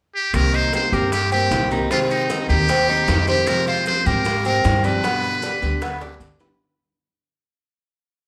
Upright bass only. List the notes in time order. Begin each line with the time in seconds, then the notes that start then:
0.34 C2
0.92 G2
1.51 C2
2.49 D#2
3.08 F2
4.06 G#2
4.65 G2
5.62 D2
6.20 G1